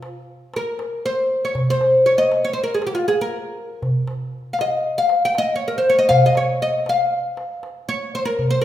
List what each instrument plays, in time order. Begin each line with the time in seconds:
Already playing: oud F4
0.03 darbuka tek
0.54 oud A#4, darbuka tek
0.79 darbuka tek
1.06 oud C5
1.45 oud C#5
1.55 darbuka dum
1.68 oud C5, darbuka ka
1.81 darbuka tek
2.06 oud C#5
2.18 oud D#5
2.32 darbuka tek
2.45 oud C#5
2.53 oud C5
2.58 darbuka ka
2.63 oud A#4
2.74 oud G#4
2.82 darbuka tek
2.87 oud G4
2.95 oud F4
3.08 oud G#4, darbuka tek
3.21 oud A#4
3.82 darbuka dum
3.95 darbuka ka
4.08 darbuka tek
4.53 oud F5
4.59 oud D#5, darbuka tek
4.84 darbuka ka
4.98 oud F5
5.09 darbuka tek
5.25 oud G5
5.35 oud D#5, darbuka tek
5.56 oud C#5
5.68 oud A#4
5.78 oud C5
5.90 oud C#5
5.99 oud D#5
6.09 oud F5, darbuka dum
6.23 oud D#5, darbuka ka
6.35 oud C#5, darbuka tek
6.62 oud D#5
6.86 oud F5, darbuka tek
7.12 darbuka ka
7.37 darbuka tek
7.63 darbuka tek
7.89 oud C#5
8.15 oud C5
8.25 oud A#4
8.39 darbuka dum
8.51 oud C5, darbuka ka
8.61 oud A#4